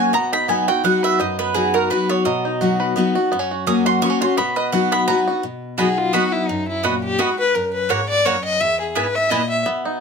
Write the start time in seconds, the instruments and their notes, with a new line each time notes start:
Already playing: steel-string acoustic guitar F#3 A#3 C#4 F#4, five-string banjo C#4, mandolin G#5
0.00 five-string banjo F#4
0.13 steel-string acoustic guitar B2, five-string banjo B3, mandolin A#5
0.32 five-string banjo D#4, mandolin B5
0.48 steel-string acoustic guitar F#3 B3 D#4 F#4, five-string banjo B3, mandolin G#5
0.68 steel-string acoustic guitar D#4 F#4, five-string banjo F#4, mandolin G5
0.84 steel-string acoustic guitar F#3 B3 D#4 F#4, five-string banjo B3, mandolin F#5
1.03 five-string banjo B4, mandolin E5
1.19 steel-string acoustic guitar F#2, five-string banjo D#4, mandolin D#5
1.39 five-string banjo B3, mandolin B4
1.54 steel-string acoustic guitar F#3 B3 D#4 F#4, mandolin G#4, five-string banjo B4
1.74 five-string banjo F#4, mandolin A#4
1.90 steel-string acoustic guitar F#3 B3 D#4 F#4, five-string banjo B4, mandolin B4
2.09 five-string banjo B3, mandolin C#5
2.25 steel-string acoustic guitar B2, five-string banjo F#3, mandolin D#5
2.45 five-string banjo D#4
2.61 steel-string acoustic guitar F#3 B3 D#4 F#4, five-string banjo F#4
2.80 five-string banjo B4
2.96 steel-string acoustic guitar F#3 B3 D#4 F#4, five-string banjo B3
3.15 steel-string acoustic guitar D#4 F#4, five-string banjo F#4
3.32 steel-string acoustic guitar F#2, five-string banjo B3
3.39 five-string banjo C#4
3.51 five-string banjo F#4
3.66 steel-string acoustic guitar F#3 A#3 C#4 F#4, five-string banjo C#4, mandolin D#6
3.86 five-string banjo F#4, mandolin C6
4.02 steel-string acoustic guitar F#3 A#3 C#4 F#4, five-string banjo B3, mandolin C#6
4.10 five-string banjo C#4
4.21 steel-string acoustic guitar C#4 F#4, five-string banjo F#4, mandolin C6
4.37 steel-string acoustic guitar B2, five-string banjo B3, mandolin B5
4.56 five-string banjo B4, mandolin D#5
4.72 steel-string acoustic guitar F#3 B3 D#4 F#4, five-string banjo F#4, mandolin F#5
4.92 five-string banjo B3, mandolin B5
5.08 steel-string acoustic guitar F#3 B3 D#4 F#4, five-string banjo B4, mandolin A#5
5.27 steel-string acoustic guitar D#4 F#4, five-string banjo F#4
5.43 steel-string acoustic guitar B2
5.78 steel-string acoustic guitar F#3 B3 D#4 F#4, mandolin B3 F#4 D#5 B5, fiddle G#4
5.98 fiddle F4
6.13 steel-string acoustic guitar F#3 B3 D#4 F#4, mandolin B3 F#4 D#5 B5, fiddle F#4
6.32 fiddle E4
6.48 steel-string acoustic guitar F#2, fiddle D#4
6.68 fiddle E4
6.83 steel-string acoustic guitar A#2, mandolin B3 F#4 D#5 B5, fiddle F#4
7.04 fiddle G4
7.18 steel-string acoustic guitar G#2, mandolin B3 F#4 D#5 B5, fiddle F#4
7.39 fiddle B4
7.54 steel-string acoustic guitar F#2, fiddle A#4
7.74 fiddle B4
7.89 steel-string acoustic guitar G#2, mandolin A#3 F#4 C#5 F#5, fiddle C#5
8.09 fiddle D5
8.25 steel-string acoustic guitar F#2, mandolin A#3 F#4 C#5 F#5, fiddle C#5
8.44 fiddle D#5
8.61 steel-string acoustic guitar E2, fiddle E5
8.80 fiddle G#4
8.95 steel-string acoustic guitar G#2, mandolin B3 E4 B4 G#5, fiddle B4
9.15 fiddle E5
9.30 steel-string acoustic guitar A#2, mandolin B3 E4 B4 G#5, fiddle D#5
9.50 fiddle E5
9.66 steel-string acoustic guitar B2, five-string banjo B3
9.85 five-string banjo D#4